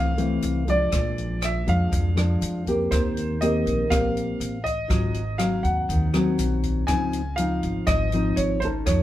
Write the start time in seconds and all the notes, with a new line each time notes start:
Already playing: C2 C3 E3 A3 C4 F5
0.17 E3 A3 C4, closed hi-hat
0.42 C2, closed hi-hat
0.68 F3 G#3 D4 D5, kick, closed hi-hat
0.92 A#1 A#2, kick, cross-stick, closed hi-hat
1.18 closed hi-hat
1.42 E5, cross-stick, closed hi-hat
1.67 F2 F3 G#3 D4 F5, kick, closed hi-hat
1.91 F2, kick, closed hi-hat
2.16 F3 G#3 D4, cross-stick, closed hi-hat
2.42 F2, closed hi-hat
2.67 A#3 C4 G4, kick, closed hi-hat
2.91 D#2 D#3 C5, kick, cross-stick, closed hi-hat
3.17 closed hi-hat
3.41 A#3 C4 G4 D#5, closed hi-hat
3.66 A#1, kick, closed hi-hat
3.89 A#1 A#3 C4 G4 F5, kick, cross-stick, closed hi-hat
4.17 closed hi-hat
4.40 A1, closed hi-hat
4.64 D#5, kick, closed hi-hat
4.88 G#1 G#2 F#3 C4 F4, kick, cross-stick, closed hi-hat
5.14 closed hi-hat
5.38 F#3 C4 F5, cross-stick, closed hi-hat
5.63 D#2 F#5, kick, closed hi-hat
5.89 D#2 D#3, kick, closed hi-hat
6.13 F#3 C4, cross-stick, closed hi-hat
6.38 A#1, closed hi-hat
6.63 kick, closed hi-hat
6.87 C#2 C#3 F3 C4 D#4 G#5, kick, cross-stick, closed hi-hat
7.13 closed hi-hat
7.36 F3 C4 D#4 F5, closed hi-hat
7.63 G#1, kick, closed hi-hat
7.87 G#1 G#2 D#5, kick, cross-stick, closed hi-hat
8.12 F3 C4 D#4, closed hi-hat
8.36 G#1 C#5, closed hi-hat
8.60 C#4 C5, kick, closed hi-hat
8.64 D#4 A4
8.86 F2 F3 C#5, kick, cross-stick, closed hi-hat